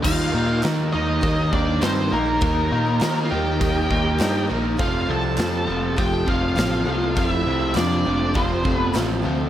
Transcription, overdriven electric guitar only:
0.03 D#3 A#3 D#4
0.32 D#3 A#3 D#4
0.63 D#3 A#3 D#4
0.93 D#3 A#3 D#4
1.22 D#3 A#3 D#4
1.52 D#3 A#3 D#4
1.81 D#3 A#3 D#4
2.12 D#3 A#3 D#4
2.42 D#3 A#3 D#4
2.71 D#3 A#3 D#4
3.02 D#3 A#3 D#4
3.31 D#3 A#3 D#4
3.61 D#3 A#3 D#4
3.91 D#3 A#3 D#4
4.20 D#3 A#3 D#4
4.50 D#3 A#3 D#4
4.79 F2 C3 F3
5.09 F2 C3 F3
5.38 F2 C3 F3
5.67 F2 C3 F3
5.96 F2 C3 F3
6.26 F2 C3 F3
6.56 F2 C3 F3
6.85 F2 C3 F3
7.15 F2 C3 F3
7.46 F2 C3 F3
7.75 F2 C3 F3
8.05 F2 C3 F3
8.34 F2 C3 F3
8.64 F2 C3 F3
8.94 F2 C3 F3
9.24 F2 C3 F3

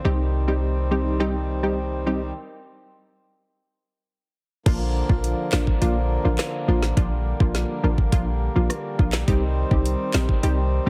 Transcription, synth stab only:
0.04 G3 C4 D#4 G4
0.48 G3 C4 D#4 G4
0.91 G3 C4 D#4 G4
1.20 G3 C4 D#4 G4
1.63 G3 C4 D#4 G4
2.06 G3 C4 D#4 G4
4.66 F3 A#3 D4 F4
5.09 F3 A#3 D4 F4
5.52 F3 A#3 D4 F4
5.81 F3 A#3 D4 F4
6.25 F3 A#3 D4 F4
6.68 F3 A#3 D4 F4
6.97 F3 A#3 D4 F4
7.40 F3 A#3 D4 F4
7.83 F3 A#3 D4 F4
8.12 F3 A#3 D4 F4
8.55 F3 A#3 D4 F4
8.99 F3 A#3 D4 F4
9.28 G3 C4 D#4 G4
9.71 G3 C4 D#4 G4
10.14 G3 C4 D#4 G4
10.43 G3 C4 D#4 G4
10.86 G3

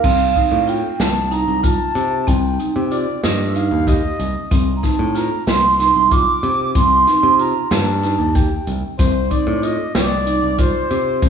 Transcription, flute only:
Already playing: F5
0.69 G5
1.01 A5
1.33 A#5
1.64 A5
2.28 G5
4.76 A#5
4.84 A5
5.17 A#5
5.48 C6
6.12 D6
6.75 C6
7.40 A#5
7.71 A5
8.36 G5

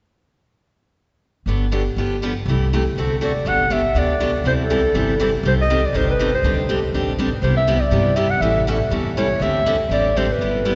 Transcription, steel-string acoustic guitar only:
1.47 D3 F#3 B3 D4 G4
1.72 D3 F#3 B3 D4 G4
1.98 D3 F3 B3 D4 G4
2.22 D3 F3 B3 D4 G4
2.48 C3 E3 A3 E4 G4
2.73 C3 E3 A3 E4 G4
2.98 D3 A3 C4 F#4 A4
3.21 D3 A3 C4 F#4 A4
3.46 D3 F#3 B3 D4 G4
3.70 D3 F#3 B3 D4 G4
3.95 D3 F#3 B3 D4 G4
4.20 D3 F#3 B3 D4 G4
4.45 C3 E3 G3 C4 E4 A4
4.70 C3 E3 G3 C4 E4 A4
4.95 C3 E3 G3 C4 E4 A4
5.20 C3 E3 G3 C4 E4 A4
5.45 C3 D#3 G3 C4 G4 A4
5.70 C3 D#3 G3 C4 G4 A4
5.94 C3 D#3 G3 C4 G4 A4
6.19 C3 D#3 G3 C4 G4 A4
6.44 D3 G3 C4 D4 G4
6.69 D3 G3 C4 D4 G4
6.94 D3 G3 C4 D4 G4
7.18 D3 G3 C4 D4 G4
7.43 C3 G3 B3 E4 G4
7.67 C3 G3 B3 E4 G4
7.91 C3 G3 B3 E4 G4
8.16 C3 G3 B3 E4 G4
8.42 E3 G3 C#4 E4 A4
8.67 E3 G3 C#4 E4 A4
8.91 E3 G3 C#4 E4 A4
9.17 E3 G3 C#4 E4 A4
9.42 D3 G3 C4 D4 G4
9.66 D3 G3 C4 D4 G4
9.91 D3 G3 C4 D4 G4
10.16 D3 G3 C4 D4 G4
10.41 G3 B3 E4 G4
10.65 G3 B3 E4 G4

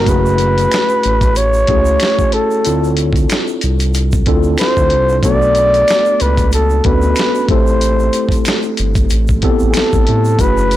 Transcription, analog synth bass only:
0.07 F#1
1.06 A1
1.70 C#2
2.67 D2
3.64 C2
4.28 D2
4.78 D2
4.93 C2
5.24 B1
6.21 C#2
6.86 D2
7.50 A1
8.80 G1
9.12 A1
9.44 A1
9.62 A1
9.76 A1
9.94 A1
10.09 A2
10.40 F#1

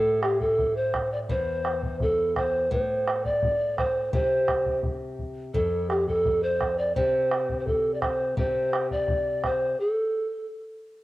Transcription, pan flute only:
Already playing: A4
0.23 G4
0.41 A4
0.76 C5
1.13 D5
1.31 C5
2.02 A4
2.38 C5
2.73 C5
3.25 D5
3.78 C5
4.13 C5
5.54 A4
5.90 G4
6.08 A4
6.43 C5
6.78 D5
6.95 C5
7.60 C5
7.67 A4
7.94 D5
8.02 C5
8.38 C5
8.92 D5
9.45 C5
9.80 A4

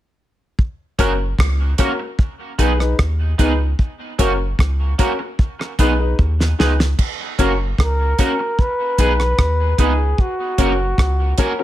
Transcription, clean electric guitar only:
0.99 A#3 C#4 F#4 A#4
1.78 A#3 C#4 F#4 A#4
1.99 muted clean electric guitar stroke
2.59 B3 D#4 G#4 B4
3.38 B3 D#4 G#4 B4
4.19 A#3 C#4 F#4 A#4
4.99 A#3 C#4 F#4 A#4
5.19 muted clean electric guitar stroke
5.59 muted clean electric guitar stroke
5.79 B3 D#4 G#4 B4
6.59 B3 D#4 G#4 B4
7.39 A#3 C#4 F#4 A#4
8.19 A#3 C#4 F#4 A#4
8.39 muted clean electric guitar stroke
8.99 B3 D#4 G#4 B4
9.79 B3 D#4 G#4 B4
10.59 A#3 C#4 F#4 A#4
11.39 A#3 C#4 F#4 A#4
11.59 muted clean electric guitar stroke

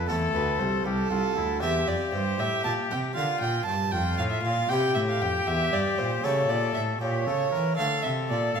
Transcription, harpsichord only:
0.09 E2 A3 C4 E4
0.35 D2
0.61 C2
0.86 C2
1.11 C2
1.36 D2
1.62 E2 C4 G4
1.88 F2
2.13 G2
2.39 A2
2.66 A#2
2.91 C3
3.17 D3 D4 A#4
3.42 A#2
3.68 G2
3.95 F2
4.20 A2
4.45 A#2
4.70 C3 C4 E4 G4
4.96 A2
5.22 F2
5.47 E2
5.74 G2
5.98 A#2
6.24 C#3 A3 E4 G4
6.50 A#2
6.75 A2
7.01 A#2
7.28 C#3
7.55 E3
7.79 D3 A3 D4 A4
8.06 C3
8.32 A#2

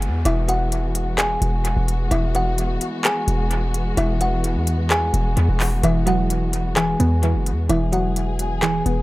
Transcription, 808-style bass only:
0.08 E2
0.25 E1
1.42 E1
1.77 E1
2.11 E1
3.28 E1
3.97 E1
4.56 E2
5.14 E1
5.37 E2
5.49 E1
5.83 E1
7.00 E2
7.35 F#1
7.52 E2
7.70 E1
8.86 E1

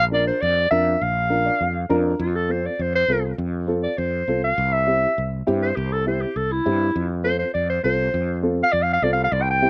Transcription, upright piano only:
0.11 D4 F4 A#4
0.71 D4 F4 A#4
1.29 D4 F4 A#4
1.45 D5
1.61 F5
1.89 D4 F4 A#4 A#5
2.49 C4 F4 A4
3.09 C4 F4 A4
3.67 C4 F4 A4
4.28 C4 F4 A4
4.87 C4 E4 G4
5.47 C4 E4 G4
6.06 C4 E4 G4
6.65 C4 E4 G4
7.23 C4 F4 A4
7.83 C4 F4 A4
8.43 C4 F4 A4
9.03 C4 F4 A4
9.62 C4 E4 G4

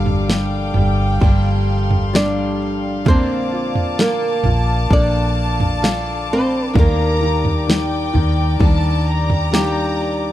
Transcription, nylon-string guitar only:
2.16 D4 D5
3.08 C4 C5
4.01 A#3 A#4
4.93 D4 D5
6.33 C4 C5
6.79 A#3 A#4
9.55 G3 G4

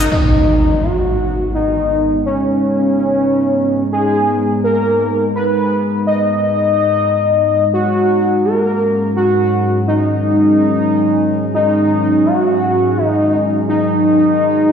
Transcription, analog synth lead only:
0.12 D#4
0.83 F#4
1.54 D#4
2.26 C#4
3.93 G#4
4.64 A#4
5.35 B4
6.07 D#5
7.74 F#4
8.45 A#4
9.16 F#4
9.88 D#4
11.54 D#4
12.26 F#4
12.97 D#4
13.69 D#4

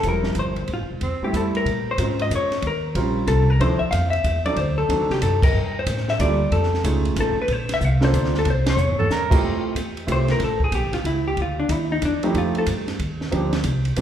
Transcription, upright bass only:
0.03 E1
0.36 G1
0.68 A1
0.80 F1
0.90 E1
1.01 E2
1.22 muted upright bass stroke
1.33 F2
1.65 A#2
1.98 G#2
2.30 F2
2.62 D#2
2.95 A#1
3.27 C2
3.60 D2
3.80 muted upright bass stroke
3.92 F2
4.24 E2
4.57 D2
4.89 D#2
5.00 D2
5.10 C2
5.22 F#2
5.54 G2
5.87 A2
6.19 D2
6.51 F2
6.84 C#2
7.16 A1
7.37 muted upright bass stroke
7.48 A#1
7.81 C2
8.13 D2
8.46 C2
8.77 E2
9.10 G2
9.43 F2
9.75 E2
10.08 C2
10.39 A1
10.72 A#1
10.83 A1
10.94 G1
11.04 C#2
11.37 D2
11.69 D#2
12.02 E2
12.34 F2
12.67 G2
13.00 D#2
13.32 D2
13.64 C2
13.97 A#1

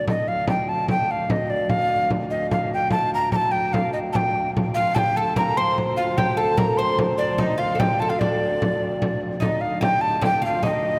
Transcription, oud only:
4.76 F4
4.96 G4
5.17 A4
5.36 A#4
5.57 C5
5.98 F4
6.18 G4
6.37 A4
6.57 A#4
6.79 C5
7.19 D4
7.38 D#4
7.58 F4
7.75 A4
7.80 G4
8.02 A4
8.10 F4
8.21 D4
9.40 D#4
9.81 G4
10.21 G4
10.42 F4
10.63 D#4

